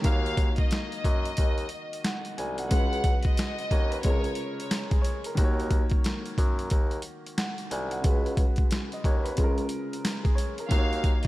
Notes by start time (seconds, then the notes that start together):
Already playing: A#4
0.02 D#2 D#3 A#3 F5, kick, closed hi-hat
0.08 F#4 C#5
0.26 closed hi-hat
0.37 kick, closed hi-hat
0.56 D#5, kick, closed hi-hat
0.71 snare, closed hi-hat
0.92 closed hi-hat
1.04 F#2, kick, closed hi-hat
1.25 closed hi-hat
1.37 D#2, kick, closed hi-hat
1.58 closed hi-hat
1.69 closed hi-hat
1.93 closed hi-hat
2.04 F#5, snare, closed hi-hat
2.25 closed hi-hat
2.38 C2 G#5, closed hi-hat
2.58 F#5, closed hi-hat
2.68 C#2 C#3 G#3, kick, closed hi-hat
2.72 F#4 F#5
2.77 B4
2.93 closed hi-hat
3.04 kick, closed hi-hat
3.23 D#5, kick, closed hi-hat
3.37 snare, closed hi-hat
3.59 D#5, closed hi-hat
3.71 D#2 C#5, kick, closed hi-hat
3.90 B4, closed hi-hat
4.01 C#2 C3 G#3 C#5, kick, closed hi-hat
4.07 C#3 F4 A#4
4.24 closed hi-hat
4.35 closed hi-hat
4.60 C#5, closed hi-hat
4.71 snare, closed hi-hat
4.90 G#4, kick, closed hi-hat
5.02 C#5, closed hi-hat
5.24 A#4, closed hi-hat
5.35 D#2 D#3 A#3, kick, closed hi-hat
5.41 F#4 C#5
5.60 closed hi-hat
5.71 kick, closed hi-hat
5.90 kick, closed hi-hat
6.04 snare, closed hi-hat
6.26 closed hi-hat
6.38 F#2, kick, closed hi-hat
6.59 closed hi-hat
6.70 D#2, kick, closed hi-hat
6.91 closed hi-hat
7.02 closed hi-hat
7.27 closed hi-hat
7.38 F#5, snare, closed hi-hat
7.58 closed hi-hat
7.71 C2 G#5, closed hi-hat
7.91 F#5, closed hi-hat
8.00 C#3 G#3, closed hi-hat
8.04 C#2 F#4, kick
8.09 B4
8.26 closed hi-hat
8.37 kick, closed hi-hat
8.56 kick, closed hi-hat
8.71 snare, closed hi-hat
8.92 D#5, closed hi-hat
9.04 D#2 C#5, kick, closed hi-hat
9.23 B4, closed hi-hat
9.35 C#2 C3 G#3, kick, closed hi-hat
9.41 C#3 F4 A#4
9.58 closed hi-hat
9.69 closed hi-hat
9.93 closed hi-hat
10.05 snare, closed hi-hat
10.23 G#4, kick, closed hi-hat
10.35 C#5, closed hi-hat
10.58 A#4, closed hi-hat
10.69 D#2 D#3 A#3 F5, kick, closed hi-hat
10.75 F#4 C#5
10.93 closed hi-hat
11.04 kick, closed hi-hat
11.23 closed hi-hat